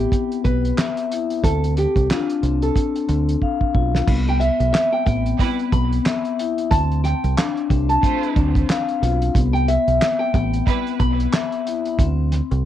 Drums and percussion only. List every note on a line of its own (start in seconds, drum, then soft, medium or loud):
0.12 kick medium
0.12 closed hi-hat medium
0.32 closed hi-hat medium
0.45 kick loud
0.45 closed hi-hat medium
0.65 closed hi-hat soft
0.78 snare loud
0.78 clap medium
0.97 closed hi-hat medium
1.12 closed hi-hat medium
1.30 closed hi-hat medium
1.44 kick loud
1.44 closed hi-hat loud
1.64 closed hi-hat medium
1.77 closed hi-hat medium
1.96 kick medium
1.96 closed hi-hat medium
2.11 snare loud
2.11 clap loud
2.30 closed hi-hat soft
2.43 closed hi-hat medium
2.62 closed hi-hat medium
2.76 kick medium
2.76 closed hi-hat medium
2.96 closed hi-hat medium
3.09 closed hi-hat medium
3.29 closed hi-hat soft
3.42 kick medium
3.61 kick medium
3.75 kick medium
3.95 snare medium
4.07 kick loud
4.07 crash loud
4.28 closed hi-hat soft
4.41 closed hi-hat medium
4.60 closed hi-hat medium
4.75 snare loud
4.75 clap loud
5.07 kick loud
5.07 closed hi-hat medium
5.26 closed hi-hat medium
5.39 kick medium
5.39 closed hi-hat medium
5.59 closed hi-hat soft
5.72 kick loud
5.72 closed hi-hat medium
5.93 closed hi-hat medium
6.06 snare loud
6.06 clap loud
6.25 closed hi-hat soft
6.39 closed hi-hat loud
6.58 closed hi-hat medium
6.71 kick loud
6.71 closed hi-hat loud
6.92 closed hi-hat soft
7.05 snare soft
7.05 closed hi-hat medium
7.24 closed hi-hat medium
7.38 snare loud
7.38 clap loud
7.57 closed hi-hat soft
7.70 kick loud
7.70 closed hi-hat medium
7.90 closed hi-hat medium
8.03 kick medium
8.03 closed hi-hat medium
8.23 closed hi-hat soft
8.36 kick loud
8.36 closed hi-hat medium
8.55 kick loud
8.55 closed hi-hat medium
8.70 snare loud
8.70 clap medium
8.89 closed hi-hat soft
9.03 closed hi-hat loud
9.22 closed hi-hat medium
9.35 kick loud
9.35 closed hi-hat loud
9.55 closed hi-hat soft
9.68 closed hi-hat medium
9.88 closed hi-hat medium
10.02 snare loud
10.02 clap loud
10.34 kick loud
10.34 closed hi-hat medium
10.53 closed hi-hat medium
10.67 kick medium
10.67 closed hi-hat medium
10.87 closed hi-hat soft
11.00 kick loud
11.00 closed hi-hat medium
11.20 closed hi-hat medium
11.33 snare loud
11.33 clap loud
11.52 closed hi-hat soft
11.67 closed hi-hat medium
11.85 closed hi-hat medium
11.99 kick loud
11.99 closed hi-hat loud
12.32 snare soft
12.32 closed hi-hat medium
12.51 closed hi-hat medium